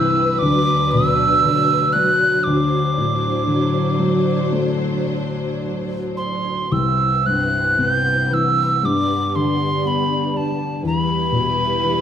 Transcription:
Already playing: felt piano C2 G2 C3 E3, string section E3 C4 B4, tin whistle E6
0.39 string section D2 F#3 D4, felt piano D2, tin whistle D6
0.91 felt piano B2, tin whistle E6
1.45 felt piano D3
1.93 felt piano F#3, tin whistle F#6
2.43 string section D4 C5, tin whistle D6
2.47 felt piano D2
2.98 felt piano A2
3.47 felt piano D3
3.99 felt piano F#3
4.52 felt piano A3
6.17 tin whistle C6
6.71 felt piano C2, string section E3 B3 C4, tin whistle E6
7.26 felt piano G2, tin whistle F#6
7.79 felt piano C3, tin whistle G6
8.31 felt piano E3, tin whistle E6
8.83 felt piano G2, string section G3 D4, tin whistle D6
9.36 felt piano D3, tin whistle C6
9.85 felt piano B3, tin whistle B5
10.34 felt piano D4, tin whistle A5
10.83 felt piano E2, string section G3 E4 B4, tin whistle B5
11.32 felt piano B2
11.84 felt piano E3

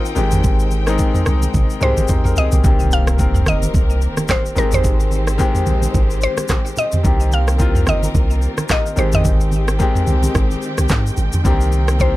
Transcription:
Already playing: grand piano D#3 A#3 C4 D#4 F4 G4, string section D#4 A#4 C5 G5
0.06 shaker
0.15 sub bass G#1, grand piano D#3 G#3 C4 G4, string section G#3, low conga, shaker
0.31 mid tom, high conga, shaker
0.44 kick, low conga, shaker
0.60 shaker
0.71 high conga, shaker
0.86 grand piano D#3 G#3 C4 D#4, cross-stick, shaker
0.99 kick, shaker
1.14 mid tom, shaker
1.26 sub bass C2, cross-stick, high conga, shaker
1.42 high conga, shaker
1.54 sub bass G#1, kick, high tom, low conga, shaker
1.70 shaker
1.80 sub bass C2, grand piano D#3 G#3 C4 G4, synth pluck C5, mid tom, shaker
1.97 sub bass G#1, high conga, shaker
2.08 grand piano D#4 C5, kick, mid tom, low conga, shaker
2.25 sub bass G#1, grand piano A#4, mid tom, shaker
2.36 grand piano C4 G#4, synth pluck D#5, floor tom, low conga, shaker
2.52 sub bass A#1, grand piano A#3 G4, floor tom, high conga, shaker
2.63 sub bass C2, grand piano D3 A#3 C4 G4, string section D#3 A#3 C4 G4 A#4, kick, impact, low conga, shaker
2.70 grand piano D#3
2.80 shaker
2.91 synth pluck F5, high conga, shaker
3.07 cross-stick, shaker
3.18 grand piano D#3 A#3 C4 A#4, kick, shaker
3.35 mid tom, shaker
3.46 sub bass G1, synth pluck D#5, cross-stick, high conga, shaker
3.62 high conga, shaker
3.74 sub bass C2, kick, low conga, shaker
3.90 shaker
4.01 shaker
4.17 cross-stick, high conga, shaker
4.28 synth pluck C5, kick, cross-stick, clap, low conga, shaker
4.46 shaker
4.55 sub bass G#1, grand piano D#3 G#3 C4 G4, string section G#3 C5, synth pluck A#4, low conga, shaker
4.72 synth pluck C5, mid tom, high conga, shaker
4.84 kick, low conga, shaker
5.00 shaker
5.11 high conga, shaker
5.27 cross-stick, shaker
5.38 grand piano D#3 G#3 C4 G4, kick, shaker
5.55 mid tom, shaker
5.66 sub bass A#1, high conga, shaker
5.82 high conga, shaker
5.94 sub bass G#1, kick, low conga, shaker
6.10 shaker
6.22 synth pluck C5, shaker
6.37 cross-stick, high conga, shaker
6.48 kick, cross-stick, clap, low conga, shaker
6.66 shaker
6.77 synth pluck D#5, low conga, shaker
6.92 mid tom, high conga, shaker
7.03 sub bass C2, grand piano D#3 A#3 C4 G4, string section D#3 A#3 A#4, kick, low conga, shaker
7.20 shaker
7.31 synth pluck F5, high conga, shaker
7.48 cross-stick, shaker
7.58 grand piano D#3 A#3 C4 F4, kick, shaker
7.75 mid tom, shaker
7.87 sub bass G1, synth pluck D#5, cross-stick, high conga, shaker
8.03 high conga, shaker
8.14 sub bass C2, kick, low conga, shaker
8.31 shaker
8.42 shaker
8.58 cross-stick, high conga, shaker
8.69 synth pluck D#5, kick, cross-stick, clap, low conga, shaker
8.86 shaker
8.96 sub bass G#1, grand piano D#3 G#3 C4 G4, string section G#3 C4 G4 G5, synth pluck C5, low conga, shaker
9.12 synth pluck D#5, mid tom, high conga, shaker
9.25 kick, low conga, shaker
9.41 shaker
9.52 high conga, shaker
9.68 cross-stick, shaker
9.79 grand piano D#3 G#3 C4 G4, kick, shaker
9.95 mid tom, shaker
10.07 sub bass C2, high conga, shaker
10.23 high conga, shaker
10.35 sub bass G#1, kick, cross-stick, low conga, shaker
10.51 shaker
10.62 shaker
10.78 sub bass C2, cross-stick, high conga, shaker
10.89 sub bass G#2, kick, cross-stick, clap, low conga, shaker
11.07 shaker
11.17 sub bass G#1, low conga, shaker
11.33 mid tom, high conga, shaker
11.44 sub bass C2, grand piano D3 A#3 C4 G4, string section A#3 C4 A#4, kick, low conga, shaker
11.50 grand piano D#3
11.61 shaker
11.72 high conga, shaker
11.88 cross-stick, shaker
11.99 grand piano D#3 A#3 C4 G4, synth pluck C5, kick, shaker

